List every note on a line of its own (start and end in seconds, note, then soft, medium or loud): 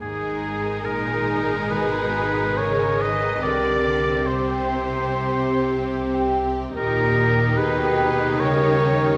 0.00 3.38 G#1 soft
0.00 3.46 G#2 soft
0.00 0.83 G#2 soft
0.00 3.39 D#3 soft
0.00 3.39 G#3 soft
0.00 0.18 D#4 soft
0.00 0.83 D#4 soft
0.00 3.39 D#4 soft
0.00 3.38 G#4 medium
0.00 0.87 G#4 medium
0.00 3.39 G#4 soft
0.00 0.83 G#4 soft
0.00 3.38 A#4 soft
0.23 3.46 G#3 soft
0.85 1.72 A#2 medium
0.85 1.73 D#4 medium
0.85 1.73 A#4 medium
0.85 1.72 A#4 medium
1.07 2.77 G#5 soft
1.49 2.13 G#4 soft
1.71 2.58 B2 medium
1.71 3.46 D#3 soft
1.71 2.57 G#4 medium
1.71 2.59 B4 medium
1.71 2.58 B4 soft
1.93 3.46 B3 soft
2.14 3.20 G#4 soft
2.58 3.01 C#3 medium
2.58 3.03 A#4 soft
2.58 3.03 C#5 medium
2.58 3.01 C#5 medium
2.79 3.46 G#5 soft
3.00 3.43 D#3 medium
3.00 3.45 B4 medium
3.00 3.43 D#5 medium
3.00 3.42 D#5 medium
3.21 3.46 G#4 soft
3.42 6.72 C2 medium
3.42 6.79 C3 soft
3.42 6.72 C3 medium
3.42 6.76 C3 medium
3.42 4.26 D3 soft
3.42 6.72 C4 soft
3.42 6.72 G4 soft
3.42 4.28 A#4 medium
3.42 4.28 D5 medium
3.42 4.27 D5 medium
4.27 6.31 C3 soft
4.27 6.35 G4 soft
4.27 6.31 C5 medium
4.27 6.35 C5 medium
4.47 6.13 G5 soft
5.10 6.79 C4 soft
6.14 7.77 G5 soft
6.76 9.17 D#2 medium
6.76 7.54 A#2 medium
6.76 9.17 D#3 medium
6.76 9.17 D#4 soft
6.76 7.60 G4 medium
6.76 9.17 G4 soft
6.76 9.17 G4 medium
6.76 7.54 A#4 medium
6.76 7.59 A#4 medium
7.57 8.40 B2 medium
7.57 8.40 G#4 medium
7.57 8.41 B4 medium
7.57 8.39 B4 medium
7.78 9.17 G5 soft
8.18 8.78 G4 soft
8.39 9.17 C#3 medium
8.39 9.17 G3 soft
8.39 9.17 A#4 medium
8.39 9.17 C#5 medium
8.60 9.17 A#3 soft
9.01 9.17 A#4 medium